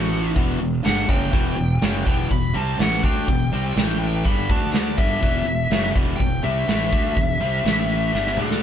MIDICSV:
0, 0, Header, 1, 5, 480
1, 0, Start_track
1, 0, Key_signature, 1, "minor"
1, 0, Tempo, 486618
1, 1307, Time_signature, 4, 2, 24, 8
1, 8510, End_track
2, 0, Start_track
2, 0, Title_t, "Lead electric guitar"
2, 0, Program_c, 0, 29
2, 0, Note_on_c, 0, 66, 76
2, 301, Note_off_c, 0, 66, 0
2, 842, Note_on_c, 0, 78, 76
2, 1059, Note_off_c, 0, 78, 0
2, 1087, Note_on_c, 0, 79, 73
2, 2240, Note_off_c, 0, 79, 0
2, 2282, Note_on_c, 0, 83, 102
2, 2500, Note_off_c, 0, 83, 0
2, 2528, Note_on_c, 0, 81, 80
2, 2766, Note_off_c, 0, 81, 0
2, 2772, Note_on_c, 0, 78, 87
2, 2998, Note_off_c, 0, 78, 0
2, 3002, Note_on_c, 0, 79, 81
2, 4202, Note_on_c, 0, 83, 90
2, 4234, Note_off_c, 0, 79, 0
2, 4443, Note_off_c, 0, 83, 0
2, 4447, Note_on_c, 0, 81, 83
2, 4655, Note_on_c, 0, 74, 77
2, 4687, Note_off_c, 0, 81, 0
2, 4904, Note_on_c, 0, 76, 68
2, 4912, Note_off_c, 0, 74, 0
2, 5829, Note_off_c, 0, 76, 0
2, 6079, Note_on_c, 0, 79, 106
2, 6318, Note_off_c, 0, 79, 0
2, 6353, Note_on_c, 0, 76, 87
2, 8287, Note_on_c, 0, 69, 78
2, 8467, Note_off_c, 0, 76, 0
2, 8510, Note_off_c, 0, 69, 0
2, 8510, End_track
3, 0, Start_track
3, 0, Title_t, "Distorted electric guitar"
3, 0, Program_c, 1, 30
3, 0, Note_on_c, 1, 45, 81
3, 0, Note_on_c, 1, 52, 84
3, 0, Note_on_c, 1, 57, 84
3, 340, Note_off_c, 1, 45, 0
3, 343, Note_off_c, 1, 52, 0
3, 344, Note_off_c, 1, 57, 0
3, 349, Note_on_c, 1, 40, 84
3, 352, Note_on_c, 1, 47, 88
3, 355, Note_on_c, 1, 52, 91
3, 580, Note_off_c, 1, 40, 0
3, 582, Note_off_c, 1, 47, 0
3, 584, Note_off_c, 1, 52, 0
3, 596, Note_on_c, 1, 40, 53
3, 600, Note_on_c, 1, 47, 60
3, 783, Note_off_c, 1, 40, 0
3, 785, Note_off_c, 1, 47, 0
3, 827, Note_on_c, 1, 43, 78
3, 834, Note_on_c, 1, 50, 86
3, 841, Note_on_c, 1, 55, 82
3, 1060, Note_off_c, 1, 43, 0
3, 1063, Note_off_c, 1, 50, 0
3, 1067, Note_off_c, 1, 55, 0
3, 1069, Note_on_c, 1, 42, 78
3, 1079, Note_on_c, 1, 49, 88
3, 1085, Note_on_c, 1, 54, 88
3, 1296, Note_off_c, 1, 42, 0
3, 1300, Note_on_c, 1, 40, 96
3, 1304, Note_off_c, 1, 49, 0
3, 1308, Note_on_c, 1, 47, 80
3, 1309, Note_off_c, 1, 54, 0
3, 1316, Note_on_c, 1, 52, 94
3, 1525, Note_off_c, 1, 40, 0
3, 1531, Note_off_c, 1, 47, 0
3, 1537, Note_on_c, 1, 40, 56
3, 1543, Note_on_c, 1, 47, 68
3, 1545, Note_off_c, 1, 52, 0
3, 1735, Note_off_c, 1, 40, 0
3, 1738, Note_off_c, 1, 47, 0
3, 1792, Note_on_c, 1, 42, 77
3, 1798, Note_on_c, 1, 49, 74
3, 1801, Note_on_c, 1, 54, 78
3, 2023, Note_off_c, 1, 42, 0
3, 2027, Note_off_c, 1, 49, 0
3, 2028, Note_off_c, 1, 54, 0
3, 2038, Note_on_c, 1, 40, 75
3, 2040, Note_on_c, 1, 47, 76
3, 2051, Note_on_c, 1, 52, 90
3, 2267, Note_off_c, 1, 40, 0
3, 2268, Note_off_c, 1, 47, 0
3, 2273, Note_off_c, 1, 52, 0
3, 2278, Note_on_c, 1, 40, 64
3, 2280, Note_on_c, 1, 47, 61
3, 2466, Note_off_c, 1, 40, 0
3, 2467, Note_off_c, 1, 47, 0
3, 2507, Note_on_c, 1, 48, 68
3, 2510, Note_on_c, 1, 55, 82
3, 2517, Note_on_c, 1, 60, 92
3, 2742, Note_off_c, 1, 48, 0
3, 2743, Note_off_c, 1, 55, 0
3, 2747, Note_off_c, 1, 60, 0
3, 2753, Note_on_c, 1, 45, 83
3, 2754, Note_on_c, 1, 52, 82
3, 2759, Note_on_c, 1, 57, 86
3, 2985, Note_off_c, 1, 45, 0
3, 2985, Note_off_c, 1, 52, 0
3, 2988, Note_off_c, 1, 57, 0
3, 2993, Note_on_c, 1, 50, 80
3, 3001, Note_on_c, 1, 62, 90
3, 3004, Note_on_c, 1, 57, 88
3, 3225, Note_off_c, 1, 50, 0
3, 3229, Note_off_c, 1, 62, 0
3, 3231, Note_off_c, 1, 57, 0
3, 3231, Note_on_c, 1, 40, 61
3, 3242, Note_on_c, 1, 47, 69
3, 3424, Note_off_c, 1, 40, 0
3, 3429, Note_off_c, 1, 47, 0
3, 3473, Note_on_c, 1, 48, 77
3, 3479, Note_on_c, 1, 55, 88
3, 3480, Note_on_c, 1, 60, 88
3, 3706, Note_off_c, 1, 48, 0
3, 3709, Note_off_c, 1, 55, 0
3, 3709, Note_off_c, 1, 60, 0
3, 3710, Note_on_c, 1, 45, 84
3, 3713, Note_on_c, 1, 52, 95
3, 3718, Note_on_c, 1, 57, 93
3, 4185, Note_off_c, 1, 45, 0
3, 4186, Note_off_c, 1, 52, 0
3, 4188, Note_off_c, 1, 57, 0
3, 4191, Note_on_c, 1, 43, 80
3, 4195, Note_on_c, 1, 50, 86
3, 4203, Note_on_c, 1, 55, 93
3, 4423, Note_off_c, 1, 50, 0
3, 4425, Note_off_c, 1, 43, 0
3, 4431, Note_off_c, 1, 55, 0
3, 4435, Note_on_c, 1, 50, 75
3, 4437, Note_on_c, 1, 57, 77
3, 4445, Note_on_c, 1, 62, 85
3, 4907, Note_off_c, 1, 50, 0
3, 4908, Note_off_c, 1, 57, 0
3, 4908, Note_on_c, 1, 43, 77
3, 4912, Note_off_c, 1, 62, 0
3, 4920, Note_on_c, 1, 50, 86
3, 4924, Note_on_c, 1, 55, 84
3, 5137, Note_off_c, 1, 43, 0
3, 5140, Note_off_c, 1, 50, 0
3, 5141, Note_on_c, 1, 40, 87
3, 5144, Note_on_c, 1, 47, 89
3, 5150, Note_off_c, 1, 55, 0
3, 5154, Note_on_c, 1, 52, 105
3, 5377, Note_off_c, 1, 40, 0
3, 5382, Note_off_c, 1, 47, 0
3, 5387, Note_off_c, 1, 52, 0
3, 5389, Note_on_c, 1, 40, 54
3, 5397, Note_on_c, 1, 47, 66
3, 5583, Note_off_c, 1, 40, 0
3, 5587, Note_off_c, 1, 47, 0
3, 5634, Note_on_c, 1, 42, 73
3, 5636, Note_on_c, 1, 49, 85
3, 5641, Note_on_c, 1, 54, 90
3, 5861, Note_off_c, 1, 42, 0
3, 5865, Note_on_c, 1, 40, 81
3, 5868, Note_off_c, 1, 49, 0
3, 5870, Note_off_c, 1, 54, 0
3, 5872, Note_on_c, 1, 47, 91
3, 5876, Note_on_c, 1, 52, 85
3, 6097, Note_off_c, 1, 40, 0
3, 6102, Note_off_c, 1, 47, 0
3, 6108, Note_off_c, 1, 52, 0
3, 6108, Note_on_c, 1, 40, 58
3, 6114, Note_on_c, 1, 47, 73
3, 6303, Note_off_c, 1, 40, 0
3, 6306, Note_off_c, 1, 47, 0
3, 6341, Note_on_c, 1, 48, 80
3, 6351, Note_on_c, 1, 55, 78
3, 6352, Note_on_c, 1, 60, 89
3, 6580, Note_off_c, 1, 48, 0
3, 6581, Note_off_c, 1, 55, 0
3, 6584, Note_on_c, 1, 45, 83
3, 6585, Note_off_c, 1, 60, 0
3, 6585, Note_on_c, 1, 52, 90
3, 6594, Note_on_c, 1, 57, 85
3, 6821, Note_off_c, 1, 45, 0
3, 6821, Note_off_c, 1, 57, 0
3, 6822, Note_off_c, 1, 52, 0
3, 6826, Note_on_c, 1, 50, 84
3, 6833, Note_on_c, 1, 57, 91
3, 6835, Note_on_c, 1, 62, 87
3, 7062, Note_off_c, 1, 50, 0
3, 7063, Note_on_c, 1, 40, 64
3, 7065, Note_off_c, 1, 57, 0
3, 7065, Note_on_c, 1, 47, 65
3, 7066, Note_off_c, 1, 62, 0
3, 7259, Note_off_c, 1, 40, 0
3, 7260, Note_off_c, 1, 47, 0
3, 7298, Note_on_c, 1, 48, 82
3, 7307, Note_on_c, 1, 55, 81
3, 7307, Note_on_c, 1, 60, 88
3, 7537, Note_off_c, 1, 48, 0
3, 7541, Note_off_c, 1, 55, 0
3, 7542, Note_off_c, 1, 60, 0
3, 7543, Note_on_c, 1, 45, 84
3, 7545, Note_on_c, 1, 52, 78
3, 7548, Note_on_c, 1, 57, 88
3, 8018, Note_off_c, 1, 45, 0
3, 8019, Note_off_c, 1, 52, 0
3, 8021, Note_off_c, 1, 57, 0
3, 8024, Note_on_c, 1, 43, 82
3, 8027, Note_on_c, 1, 50, 86
3, 8031, Note_on_c, 1, 55, 90
3, 8247, Note_off_c, 1, 50, 0
3, 8258, Note_off_c, 1, 43, 0
3, 8259, Note_off_c, 1, 55, 0
3, 8259, Note_on_c, 1, 50, 77
3, 8263, Note_on_c, 1, 57, 81
3, 8270, Note_on_c, 1, 62, 92
3, 8510, Note_off_c, 1, 50, 0
3, 8510, Note_off_c, 1, 57, 0
3, 8510, Note_off_c, 1, 62, 0
3, 8510, End_track
4, 0, Start_track
4, 0, Title_t, "Fingered electric bass"
4, 0, Program_c, 2, 33
4, 0, Note_on_c, 2, 33, 90
4, 319, Note_off_c, 2, 33, 0
4, 361, Note_on_c, 2, 28, 74
4, 577, Note_off_c, 2, 28, 0
4, 607, Note_on_c, 2, 28, 71
4, 821, Note_off_c, 2, 28, 0
4, 844, Note_on_c, 2, 31, 84
4, 1059, Note_off_c, 2, 31, 0
4, 1075, Note_on_c, 2, 30, 82
4, 1295, Note_off_c, 2, 30, 0
4, 1322, Note_on_c, 2, 28, 79
4, 1539, Note_off_c, 2, 28, 0
4, 1565, Note_on_c, 2, 28, 69
4, 1781, Note_off_c, 2, 28, 0
4, 1796, Note_on_c, 2, 30, 82
4, 2016, Note_off_c, 2, 30, 0
4, 2046, Note_on_c, 2, 28, 89
4, 2262, Note_off_c, 2, 28, 0
4, 2278, Note_on_c, 2, 28, 64
4, 2497, Note_off_c, 2, 28, 0
4, 2522, Note_on_c, 2, 36, 86
4, 2740, Note_off_c, 2, 36, 0
4, 2753, Note_on_c, 2, 33, 89
4, 2975, Note_off_c, 2, 33, 0
4, 3002, Note_on_c, 2, 38, 88
4, 3220, Note_off_c, 2, 38, 0
4, 3238, Note_on_c, 2, 28, 64
4, 3459, Note_off_c, 2, 28, 0
4, 3481, Note_on_c, 2, 36, 77
4, 3700, Note_off_c, 2, 36, 0
4, 3714, Note_on_c, 2, 33, 94
4, 4160, Note_off_c, 2, 33, 0
4, 4199, Note_on_c, 2, 31, 80
4, 4420, Note_off_c, 2, 31, 0
4, 4437, Note_on_c, 2, 38, 94
4, 4882, Note_off_c, 2, 38, 0
4, 4920, Note_on_c, 2, 31, 80
4, 5140, Note_off_c, 2, 31, 0
4, 5159, Note_on_c, 2, 28, 77
4, 5380, Note_off_c, 2, 28, 0
4, 5385, Note_on_c, 2, 28, 68
4, 5612, Note_off_c, 2, 28, 0
4, 5622, Note_on_c, 2, 30, 88
4, 5851, Note_off_c, 2, 30, 0
4, 5881, Note_on_c, 2, 28, 88
4, 6101, Note_off_c, 2, 28, 0
4, 6118, Note_on_c, 2, 28, 69
4, 6339, Note_off_c, 2, 28, 0
4, 6351, Note_on_c, 2, 36, 92
4, 6575, Note_off_c, 2, 36, 0
4, 6589, Note_on_c, 2, 33, 83
4, 6814, Note_off_c, 2, 33, 0
4, 6837, Note_on_c, 2, 38, 86
4, 7058, Note_off_c, 2, 38, 0
4, 7071, Note_on_c, 2, 28, 65
4, 7292, Note_off_c, 2, 28, 0
4, 7298, Note_on_c, 2, 36, 87
4, 7527, Note_off_c, 2, 36, 0
4, 7542, Note_on_c, 2, 33, 86
4, 7991, Note_off_c, 2, 33, 0
4, 8023, Note_on_c, 2, 31, 81
4, 8248, Note_off_c, 2, 31, 0
4, 8271, Note_on_c, 2, 38, 81
4, 8510, Note_off_c, 2, 38, 0
4, 8510, End_track
5, 0, Start_track
5, 0, Title_t, "Drums"
5, 356, Note_on_c, 9, 36, 93
5, 363, Note_on_c, 9, 46, 49
5, 455, Note_off_c, 9, 36, 0
5, 462, Note_off_c, 9, 46, 0
5, 838, Note_on_c, 9, 46, 48
5, 847, Note_on_c, 9, 38, 99
5, 937, Note_off_c, 9, 46, 0
5, 946, Note_off_c, 9, 38, 0
5, 1074, Note_on_c, 9, 36, 88
5, 1173, Note_off_c, 9, 36, 0
5, 1313, Note_on_c, 9, 36, 98
5, 1320, Note_on_c, 9, 46, 46
5, 1412, Note_off_c, 9, 36, 0
5, 1419, Note_off_c, 9, 46, 0
5, 1789, Note_on_c, 9, 46, 42
5, 1798, Note_on_c, 9, 38, 106
5, 1888, Note_off_c, 9, 46, 0
5, 1897, Note_off_c, 9, 38, 0
5, 2037, Note_on_c, 9, 36, 104
5, 2136, Note_off_c, 9, 36, 0
5, 2275, Note_on_c, 9, 46, 47
5, 2276, Note_on_c, 9, 36, 72
5, 2374, Note_off_c, 9, 36, 0
5, 2374, Note_off_c, 9, 46, 0
5, 2755, Note_on_c, 9, 46, 43
5, 2764, Note_on_c, 9, 38, 99
5, 2854, Note_off_c, 9, 46, 0
5, 2863, Note_off_c, 9, 38, 0
5, 2996, Note_on_c, 9, 36, 99
5, 3094, Note_off_c, 9, 36, 0
5, 3236, Note_on_c, 9, 46, 49
5, 3237, Note_on_c, 9, 36, 79
5, 3335, Note_off_c, 9, 46, 0
5, 3336, Note_off_c, 9, 36, 0
5, 3715, Note_on_c, 9, 46, 47
5, 3724, Note_on_c, 9, 38, 105
5, 3814, Note_off_c, 9, 46, 0
5, 3823, Note_off_c, 9, 38, 0
5, 4191, Note_on_c, 9, 46, 43
5, 4195, Note_on_c, 9, 36, 98
5, 4290, Note_off_c, 9, 46, 0
5, 4294, Note_off_c, 9, 36, 0
5, 4434, Note_on_c, 9, 36, 95
5, 4533, Note_off_c, 9, 36, 0
5, 4668, Note_on_c, 9, 46, 51
5, 4677, Note_on_c, 9, 38, 103
5, 4767, Note_off_c, 9, 46, 0
5, 4776, Note_off_c, 9, 38, 0
5, 4914, Note_on_c, 9, 36, 96
5, 5013, Note_off_c, 9, 36, 0
5, 5155, Note_on_c, 9, 46, 48
5, 5156, Note_on_c, 9, 36, 88
5, 5253, Note_off_c, 9, 46, 0
5, 5254, Note_off_c, 9, 36, 0
5, 5630, Note_on_c, 9, 46, 48
5, 5639, Note_on_c, 9, 38, 96
5, 5729, Note_off_c, 9, 46, 0
5, 5738, Note_off_c, 9, 38, 0
5, 5875, Note_on_c, 9, 36, 99
5, 5973, Note_off_c, 9, 36, 0
5, 6115, Note_on_c, 9, 36, 76
5, 6116, Note_on_c, 9, 46, 45
5, 6214, Note_off_c, 9, 36, 0
5, 6214, Note_off_c, 9, 46, 0
5, 6590, Note_on_c, 9, 46, 47
5, 6599, Note_on_c, 9, 38, 107
5, 6689, Note_off_c, 9, 46, 0
5, 6698, Note_off_c, 9, 38, 0
5, 6831, Note_on_c, 9, 36, 93
5, 6930, Note_off_c, 9, 36, 0
5, 7070, Note_on_c, 9, 36, 83
5, 7070, Note_on_c, 9, 46, 43
5, 7168, Note_off_c, 9, 36, 0
5, 7169, Note_off_c, 9, 46, 0
5, 7551, Note_on_c, 9, 46, 49
5, 7560, Note_on_c, 9, 38, 103
5, 7650, Note_off_c, 9, 46, 0
5, 7659, Note_off_c, 9, 38, 0
5, 8039, Note_on_c, 9, 38, 50
5, 8138, Note_off_c, 9, 38, 0
5, 8154, Note_on_c, 9, 38, 50
5, 8252, Note_off_c, 9, 38, 0
5, 8256, Note_on_c, 9, 47, 67
5, 8355, Note_off_c, 9, 47, 0
5, 8396, Note_on_c, 9, 38, 59
5, 8495, Note_off_c, 9, 38, 0
5, 8510, End_track
0, 0, End_of_file